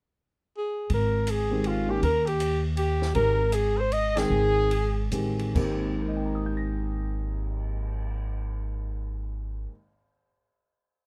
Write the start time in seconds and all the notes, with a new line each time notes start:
0.58 G#4
0.90 G#1, kick, ride
0.94 A#4
1.27 G#4, hi-hat pedal, ride
1.51 D#3 G#3 C4 G4
1.64 F4, ride
1.88 D#3 A#3 C#4 G4
1.92 G4
2.02 D#2 A#4, kick, ride
2.26 G4, ride
2.40 hi-hat pedal, ride
2.77 G4, ride
3.02 snare
3.15 G#1 D#3 G#3 C4 G4 A#4, kick, ride
3.52 G#4, hi-hat pedal, ride
3.77 C5
3.92 D#5, ride
4.16 D#3 G#3 C4 G#4 G5, snare, ride
4.30 G#1
4.71 ride
5.12 A1 D#3 G#3 C4 G4, hi-hat pedal, ride
5.39 ride
5.54 G#1 G#2 D#3 A#3 C4 G4, kick, crash
5.84 cymbal swell
6.00 A#4
6.08 D#5
6.16 G5
6.25 A#5
6.35 D#6
6.46 G6
6.57 A#6